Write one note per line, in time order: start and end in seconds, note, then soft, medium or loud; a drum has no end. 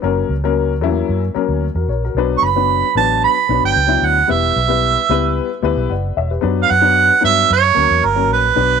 0.02 0.22 F#1 medium
0.02 0.31 F#3 medium
0.02 0.31 A#3 medium
0.02 0.31 C#4 medium
0.02 0.32 A#4 medium
0.29 0.82 C#2 medium
0.44 0.72 F#3 medium
0.44 0.72 A#3 medium
0.44 0.72 C#4 medium
0.44 0.72 A#4 medium
0.81 1.02 E2 medium
0.81 1.20 F#3 medium
0.81 0.88 A3 medium
0.81 1.21 C#4 medium
0.81 1.21 E4 loud
0.89 1.24 A#3 medium
1.09 1.29 F#2 medium
1.34 1.64 F#3 medium
1.34 1.64 A#3 medium
1.34 1.64 C#4 medium
1.34 1.62 A#4 medium
1.34 muted fingered electric bass stroke soft
1.49 1.68 D2 medium
1.75 1.85 E2 medium
1.75 1.89 F#4 medium
1.75 1.88 A#4 medium
1.88 2.08 A#1 medium
1.88 2.02 A#4 medium
1.88 2.02 C#5 medium
2.05 2.29 F#4 soft
2.05 2.29 A#4 medium
2.15 2.35 B1 medium
2.15 2.45 F#3 medium
2.15 2.45 B3 medium
2.15 2.45 D4 medium
2.15 2.46 B4 medium
2.38 2.46 C#6 medium
2.42 2.81 F#1 medium
2.42 2.97 B5 loud
2.55 2.84 F#3 medium
2.55 2.85 B3 medium
2.55 2.85 D4 medium
2.55 2.85 B4 medium
2.95 3.25 A1 medium
2.95 3.34 F#3 medium
2.95 3.34 B3 medium
2.95 3.34 D4 medium
2.95 3.35 B4 medium
2.95 3.21 A5 medium
3.24 3.61 B5 medium
3.49 3.59 B1 medium
3.49 3.78 F#3 medium
3.49 3.78 B3 medium
3.49 3.78 D4 medium
3.49 3.78 B4 medium
3.63 3.72 G1 medium
3.63 4.07 G5 medium
3.76 3.96 C#2 medium
3.87 4.17 F#3 medium
3.87 4.17 B3 medium
3.87 4.17 D4 medium
3.87 4.18 E4 medium
4.02 4.22 D2 medium
4.02 4.32 F#5 medium
4.28 4.49 E1 medium
4.28 4.57 G3 medium
4.28 4.58 B3 medium
4.28 4.58 E4 medium
4.28 4.58 B4 medium
4.28 5.37 E5 medium
4.56 4.95 B1 medium
4.68 4.97 G3 medium
4.68 4.97 B3 medium
4.68 4.98 E4 medium
4.68 4.98 B4 medium
5.09 5.39 C#2 medium
5.09 5.48 G3 medium
5.09 5.48 B3 medium
5.09 5.48 E4 medium
5.09 5.48 B4 loud
5.62 5.73 D2 medium
5.62 5.91 G3 medium
5.62 5.91 B3 medium
5.62 5.92 E4 medium
5.62 5.90 B4 loud
5.76 5.86 B1 medium
5.90 6.10 F#1 medium
5.90 6.16 D5 medium
5.90 6.15 F#5 medium
6.17 6.36 E1 medium
6.17 6.30 C#5 medium
6.17 6.29 E5 medium
6.31 6.56 G4 medium
6.31 6.41 B4 medium
6.41 6.63 F#2 medium
6.41 6.71 F#3 medium
6.41 6.71 B3 medium
6.41 6.71 D4 medium
6.41 6.72 B4 medium
6.63 6.72 F5 medium
6.70 7.09 F#2 medium
6.70 7.24 F#5 loud
6.81 7.11 F#3 medium
6.81 7.11 B3 medium
6.81 7.11 D4 medium
6.81 7.12 B4 medium
7.21 7.43 G2 medium
7.21 7.49 F#3 medium
7.21 7.49 B3 medium
7.21 7.49 D4 medium
7.21 7.50 B4 medium
7.25 7.49 E5 loud
7.50 7.70 F#2 medium
7.50 8.07 C#5 medium
7.74 7.86 D2 medium
7.74 8.04 F#3 medium
7.74 8.04 A#3 medium
7.74 8.05 C#4 medium
7.74 8.05 A#4 medium
7.91 8.00 E2 medium
8.03 8.30 G1 medium
8.03 8.31 A#4 medium
8.15 8.45 F#3 medium
8.15 8.45 A#3 medium
8.15 8.45 C#4 medium
8.15 8.45 A#4 medium
8.30 8.50 A#1 medium
8.30 8.80 B4 medium
8.55 8.80 B1 medium
8.55 8.80 F#3 medium
8.55 8.80 B3 medium
8.55 8.80 D4 medium
8.55 8.80 B4 medium